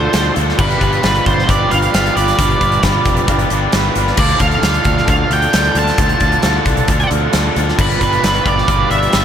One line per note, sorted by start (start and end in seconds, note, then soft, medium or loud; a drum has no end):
0.00 0.10 D3 medium
0.00 0.12 D4 medium
0.00 0.13 F4 medium
0.00 0.13 A4 medium
0.00 0.32 C5 medium
0.11 0.29 D2 medium
0.11 0.56 D3 medium
0.11 0.36 D4 medium
0.11 0.35 F4 medium
0.11 0.32 A4 medium
0.11 snare loud
0.11 closed hi-hat loud
0.34 0.52 D2 medium
0.34 0.58 D4 medium
0.34 0.58 F4 medium
0.34 0.56 A4 medium
0.34 closed hi-hat medium
0.49 snare soft
0.57 0.74 G1 loud
0.57 1.02 G3 loud
0.57 0.81 D4 loud
0.57 0.79 F4 medium
0.57 0.78 B4 loud
0.57 0.83 B4 medium
0.57 kick loud
0.57 crash loud
0.70 closed hi-hat soft
0.79 0.96 G1 medium
0.79 1.03 D4 medium
0.79 1.04 F4 medium
0.79 1.05 B4 medium
0.79 kick medium
0.79 closed hi-hat medium
0.84 1.26 B4 medium
0.93 closed hi-hat soft
1.02 1.19 G1 loud
1.02 1.45 G3 medium
1.02 1.47 D4 medium
1.02 1.49 F4 medium
1.02 1.49 B4 medium
1.02 snare loud
1.02 closed hi-hat medium
1.15 closed hi-hat soft
1.26 1.41 G1 medium
1.26 1.50 C5 loud
1.26 kick loud
1.26 closed hi-hat medium
1.39 snare soft
1.46 1.64 G1 medium
1.46 1.91 G3 medium
1.46 1.72 D4 medium
1.46 1.70 F4 loud
1.46 1.68 B4 loud
1.46 1.72 D5 loud
1.46 kick loud
1.46 closed hi-hat loud
1.69 1.87 G1 medium
1.69 1.93 D4 medium
1.69 1.95 F4 medium
1.69 1.95 B4 medium
1.69 2.16 F5 loud
1.69 closed hi-hat medium
1.82 closed hi-hat soft
1.93 2.09 G1 medium
1.93 2.35 G3 medium
1.93 2.17 D4 medium
1.93 2.16 F4 medium
1.93 2.13 B4 medium
1.93 snare loud
1.93 closed hi-hat loud
2.06 closed hi-hat soft
2.14 2.31 G1 medium
2.14 2.38 D4 medium
2.14 2.38 F4 medium
2.14 2.38 B4 medium
2.14 2.80 D5 medium
2.14 closed hi-hat medium
2.28 snare soft
2.28 closed hi-hat soft
2.36 2.54 G1 medium
2.36 2.82 G3 loud
2.36 2.62 D4 medium
2.36 2.60 F4 medium
2.36 2.58 B4 loud
2.36 kick loud
2.36 closed hi-hat loud
2.50 closed hi-hat soft
2.59 2.76 G1 loud
2.59 2.84 D4 medium
2.59 2.85 F4 medium
2.59 2.85 B4 medium
2.59 kick medium
2.59 closed hi-hat medium
2.72 closed hi-hat soft
2.83 2.98 G1 loud
2.83 3.26 G3 medium
2.83 3.27 D4 medium
2.83 3.29 F4 medium
2.83 3.29 B4 medium
2.83 kick medium
2.83 snare loud
2.83 closed hi-hat loud
3.05 3.21 F1 medium
3.05 kick medium
3.05 closed hi-hat medium
3.17 closed hi-hat medium
3.27 3.43 G1 loud
3.27 3.71 G3 medium
3.27 3.53 D4 medium
3.27 3.51 F4 medium
3.27 3.49 B4 loud
3.27 kick loud
3.27 closed hi-hat loud
3.39 closed hi-hat soft
3.50 3.66 G1 medium
3.50 3.72 D4 medium
3.50 3.74 F4 medium
3.50 3.74 B4 medium
3.50 closed hi-hat medium
3.72 3.88 G1 medium
3.72 4.16 G3 medium
3.72 3.97 D4 medium
3.72 3.96 F4 medium
3.72 3.93 B4 medium
3.72 snare loud
3.72 closed hi-hat loud
3.94 4.11 G1 medium
3.94 4.17 D4 medium
3.94 4.18 F4 medium
3.94 4.17 B4 medium
3.94 closed hi-hat medium
4.07 snare soft
4.16 4.33 D2 medium
4.16 4.61 D3 medium
4.16 4.42 D4 medium
4.16 4.40 F4 medium
4.16 4.38 A4 loud
4.16 4.41 D5 medium
4.16 kick loud
4.16 crash loud
4.29 closed hi-hat soft
4.39 4.56 D2 loud
4.39 4.62 D4 medium
4.39 4.63 F4 medium
4.39 4.64 A4 medium
4.39 5.09 F5 medium
4.39 kick medium
4.39 closed hi-hat medium
4.51 closed hi-hat soft
4.62 4.78 D2 medium
4.62 5.05 D3 medium
4.62 5.07 D4 medium
4.62 5.08 F4 medium
4.62 5.08 A4 medium
4.62 snare loud
4.62 closed hi-hat medium
4.74 closed hi-hat soft
4.84 5.01 D2 medium
4.84 kick medium
4.84 closed hi-hat medium
4.97 snare soft
5.06 5.23 D2 loud
5.06 5.51 D3 medium
5.06 5.31 D4 medium
5.06 5.29 F4 loud
5.06 5.27 A4 loud
5.06 5.30 F5 medium
5.06 kick loud
5.06 closed hi-hat medium
5.28 5.46 D2 medium
5.28 5.54 D4 medium
5.28 5.55 F4 medium
5.28 5.55 A4 medium
5.28 closed hi-hat medium
5.33 5.78 G5 medium
5.42 closed hi-hat soft
5.52 5.69 D2 loud
5.52 5.97 D3 medium
5.52 5.77 D4 medium
5.52 5.76 F4 medium
5.52 5.74 A4 medium
5.52 snare loud
5.52 closed hi-hat loud
5.64 closed hi-hat soft
5.75 5.90 D2 medium
5.75 5.99 D4 medium
5.75 6.00 F4 medium
5.75 6.00 A4 medium
5.75 7.08 A5 loud
5.75 closed hi-hat medium
5.87 snare soft
5.87 closed hi-hat medium
5.98 6.13 D2 loud
5.98 6.42 D3 medium
5.98 6.22 D4 medium
5.98 6.21 F4 loud
5.98 6.19 A4 loud
5.98 kick loud
5.98 closed hi-hat loud
6.09 closed hi-hat soft
6.20 6.36 D2 medium
6.20 6.44 D4 medium
6.20 6.44 F4 medium
6.20 6.45 A4 medium
6.20 kick medium
6.20 closed hi-hat medium
6.32 closed hi-hat soft
6.42 6.58 D2 medium
6.42 6.86 D3 medium
6.42 6.89 D4 medium
6.42 6.89 F4 medium
6.42 6.89 A4 medium
6.42 snare loud
6.42 closed hi-hat loud
6.65 6.81 C2 medium
6.65 kick medium
6.65 closed hi-hat medium
6.77 closed hi-hat medium
6.88 7.04 D2 loud
6.88 7.31 D3 medium
6.88 7.12 D4 medium
6.88 7.11 F4 loud
6.88 7.08 A4 loud
6.88 kick loud
6.88 closed hi-hat loud
7.00 closed hi-hat soft
7.09 7.26 D2 loud
7.09 7.33 D4 medium
7.09 7.34 F4 medium
7.09 7.34 A4 medium
7.09 closed hi-hat medium
7.33 7.49 D2 medium
7.33 7.77 D3 medium
7.33 7.57 D4 medium
7.33 7.57 F4 medium
7.33 7.54 A4 medium
7.33 snare loud
7.33 closed hi-hat loud
7.55 7.71 D2 medium
7.55 7.78 D4 medium
7.55 7.80 F4 medium
7.55 7.77 A4 medium
7.55 closed hi-hat medium
7.68 snare soft
7.78 7.93 G1 loud
7.78 8.22 G3 medium
7.78 8.02 D4 medium
7.78 8.01 F4 medium
7.78 7.99 B4 loud
7.78 8.01 B4 medium
7.78 kick loud
7.78 crash loud
7.91 closed hi-hat soft
8.00 8.16 G1 loud
8.00 8.24 D4 medium
8.00 8.24 F4 medium
8.00 8.26 B4 medium
8.00 8.48 B4 medium
8.00 kick medium
8.00 closed hi-hat medium
8.13 closed hi-hat soft
8.23 8.38 G1 medium
8.23 8.65 G3 medium
8.23 8.67 D4 medium
8.23 8.68 F4 medium
8.23 8.68 B4 medium
8.23 snare loud
8.23 closed hi-hat medium
8.35 closed hi-hat soft
8.46 8.61 G1 medium
8.46 8.91 D5 loud
8.46 kick medium
8.46 closed hi-hat medium
8.58 snare soft
8.66 8.83 G1 loud
8.66 9.10 G3 medium
8.66 8.92 D4 medium
8.66 8.90 F4 medium
8.66 8.88 B4 loud
8.66 kick loud
8.66 closed hi-hat medium
8.89 9.06 G1 medium
8.89 9.12 D4 medium
8.89 9.13 F4 medium
8.89 9.14 B4 medium
8.89 9.25 E5 loud
8.89 closed hi-hat medium
9.03 closed hi-hat soft
9.11 9.25 G1 loud
9.11 9.25 G3 medium
9.11 9.25 D4 medium
9.11 9.25 F4 medium
9.11 9.25 B4 medium
9.11 snare loud
9.11 closed hi-hat loud